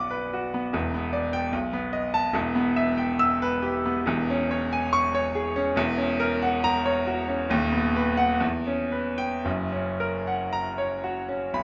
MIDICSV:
0, 0, Header, 1, 2, 480
1, 0, Start_track
1, 0, Tempo, 824176
1, 432, Time_signature, 2, 2, 24, 8
1, 1862, Tempo, 860832
1, 4262, Tempo, 928793
1, 4742, Tempo, 1036269
1, 6224, End_track
2, 0, Start_track
2, 0, Title_t, "Grand piano"
2, 0, Program_c, 0, 0
2, 0, Control_c, 0, 64, 127
2, 0, Note_on_c, 0, 35, 65
2, 0, Note_on_c, 0, 59, 54
2, 0, Note_on_c, 0, 74, 64
2, 0, Note_on_c, 0, 78, 57
2, 0, Note_on_c, 0, 86, 88
2, 61, Note_on_c, 0, 71, 58
2, 136, Note_off_c, 0, 86, 0
2, 195, Note_on_c, 0, 66, 57
2, 261, Note_off_c, 0, 71, 0
2, 314, Note_off_c, 0, 59, 0
2, 314, Note_on_c, 0, 59, 56
2, 387, Note_off_c, 0, 66, 0
2, 413, Note_off_c, 0, 35, 0
2, 426, Note_on_c, 0, 28, 70
2, 430, Note_on_c, 0, 40, 70
2, 433, Note_off_c, 0, 59, 0
2, 442, Control_c, 0, 64, 0
2, 443, Note_off_c, 0, 74, 0
2, 447, Note_off_c, 0, 78, 0
2, 535, Control_c, 0, 64, 127
2, 546, Note_on_c, 0, 59, 53
2, 657, Note_on_c, 0, 74, 65
2, 733, Note_off_c, 0, 59, 0
2, 775, Note_on_c, 0, 79, 78
2, 846, Note_off_c, 0, 74, 0
2, 880, Note_off_c, 0, 28, 0
2, 882, Note_off_c, 0, 40, 0
2, 889, Note_on_c, 0, 35, 73
2, 895, Note_off_c, 0, 79, 0
2, 907, Control_c, 0, 64, 0
2, 983, Control_c, 0, 64, 127
2, 1009, Note_on_c, 0, 59, 64
2, 1123, Note_on_c, 0, 75, 61
2, 1206, Note_off_c, 0, 59, 0
2, 1246, Note_on_c, 0, 81, 93
2, 1323, Note_off_c, 0, 75, 0
2, 1358, Note_off_c, 0, 35, 0
2, 1359, Note_on_c, 0, 28, 78
2, 1368, Note_on_c, 0, 40, 76
2, 1371, Note_off_c, 0, 81, 0
2, 1387, Control_c, 0, 64, 0
2, 1472, Control_c, 0, 64, 127
2, 1485, Note_on_c, 0, 59, 66
2, 1609, Note_on_c, 0, 76, 67
2, 1683, Note_off_c, 0, 59, 0
2, 1733, Note_on_c, 0, 79, 60
2, 1808, Note_off_c, 0, 76, 0
2, 1860, Note_on_c, 0, 88, 105
2, 1932, Note_off_c, 0, 79, 0
2, 1987, Note_on_c, 0, 71, 77
2, 2055, Note_off_c, 0, 88, 0
2, 2101, Note_on_c, 0, 67, 63
2, 2181, Note_off_c, 0, 71, 0
2, 2229, Note_on_c, 0, 59, 65
2, 2300, Note_off_c, 0, 67, 0
2, 2320, Note_off_c, 0, 28, 0
2, 2324, Note_off_c, 0, 40, 0
2, 2342, Note_on_c, 0, 28, 79
2, 2350, Note_on_c, 0, 40, 80
2, 2351, Note_off_c, 0, 59, 0
2, 2360, Control_c, 0, 64, 0
2, 2449, Control_c, 0, 64, 127
2, 2478, Note_on_c, 0, 61, 66
2, 2593, Note_on_c, 0, 73, 69
2, 2668, Note_off_c, 0, 61, 0
2, 2714, Note_on_c, 0, 80, 69
2, 2783, Note_off_c, 0, 73, 0
2, 2827, Note_on_c, 0, 85, 107
2, 2900, Note_off_c, 0, 80, 0
2, 2948, Note_on_c, 0, 73, 80
2, 3013, Note_off_c, 0, 85, 0
2, 3063, Note_on_c, 0, 68, 60
2, 3130, Note_off_c, 0, 73, 0
2, 3180, Note_on_c, 0, 61, 74
2, 3247, Note_off_c, 0, 68, 0
2, 3267, Note_off_c, 0, 28, 0
2, 3271, Note_off_c, 0, 40, 0
2, 3290, Note_on_c, 0, 28, 73
2, 3296, Note_off_c, 0, 61, 0
2, 3298, Note_on_c, 0, 40, 92
2, 3303, Control_c, 0, 64, 0
2, 3398, Control_c, 0, 64, 127
2, 3412, Note_on_c, 0, 61, 64
2, 3535, Note_on_c, 0, 70, 77
2, 3610, Note_off_c, 0, 61, 0
2, 3661, Note_on_c, 0, 78, 72
2, 3732, Note_off_c, 0, 70, 0
2, 3781, Note_on_c, 0, 82, 112
2, 3854, Note_off_c, 0, 78, 0
2, 3901, Note_on_c, 0, 73, 75
2, 3973, Note_off_c, 0, 82, 0
2, 4022, Note_on_c, 0, 66, 63
2, 4092, Note_off_c, 0, 73, 0
2, 4140, Note_on_c, 0, 61, 64
2, 4213, Note_off_c, 0, 66, 0
2, 4237, Note_off_c, 0, 28, 0
2, 4241, Note_off_c, 0, 40, 0
2, 4259, Note_on_c, 0, 27, 80
2, 4262, Note_off_c, 0, 61, 0
2, 4265, Note_on_c, 0, 39, 89
2, 4271, Control_c, 0, 64, 0
2, 4364, Control_c, 0, 64, 127
2, 4376, Note_on_c, 0, 59, 58
2, 4499, Note_on_c, 0, 71, 66
2, 4568, Note_off_c, 0, 59, 0
2, 4609, Note_on_c, 0, 78, 86
2, 4693, Note_off_c, 0, 71, 0
2, 4725, Note_off_c, 0, 27, 0
2, 4729, Note_off_c, 0, 39, 0
2, 4729, Note_on_c, 0, 40, 74
2, 4737, Note_off_c, 0, 78, 0
2, 4749, Control_c, 0, 64, 0
2, 4828, Control_c, 0, 64, 127
2, 4854, Note_on_c, 0, 61, 64
2, 4968, Note_on_c, 0, 71, 50
2, 5042, Note_off_c, 0, 61, 0
2, 5089, Note_on_c, 0, 79, 74
2, 5164, Note_off_c, 0, 71, 0
2, 5196, Note_off_c, 0, 40, 0
2, 5213, Note_on_c, 0, 30, 62
2, 5214, Note_off_c, 0, 79, 0
2, 5216, Note_on_c, 0, 42, 68
2, 5226, Control_c, 0, 64, 0
2, 5305, Control_c, 0, 64, 127
2, 5340, Note_on_c, 0, 61, 56
2, 5469, Note_on_c, 0, 70, 59
2, 5537, Note_off_c, 0, 61, 0
2, 5596, Note_on_c, 0, 78, 55
2, 5660, Note_off_c, 0, 70, 0
2, 5713, Note_on_c, 0, 82, 80
2, 5780, Note_off_c, 0, 78, 0
2, 5831, Note_on_c, 0, 73, 59
2, 5898, Note_off_c, 0, 82, 0
2, 5950, Note_on_c, 0, 66, 56
2, 6018, Note_off_c, 0, 73, 0
2, 6065, Note_on_c, 0, 61, 53
2, 6138, Note_off_c, 0, 66, 0
2, 6162, Note_off_c, 0, 30, 0
2, 6164, Note_off_c, 0, 42, 0
2, 6181, Note_on_c, 0, 35, 62
2, 6183, Note_off_c, 0, 61, 0
2, 6183, Note_on_c, 0, 83, 71
2, 6191, Control_c, 0, 64, 0
2, 6224, Note_off_c, 0, 35, 0
2, 6224, Note_off_c, 0, 83, 0
2, 6224, End_track
0, 0, End_of_file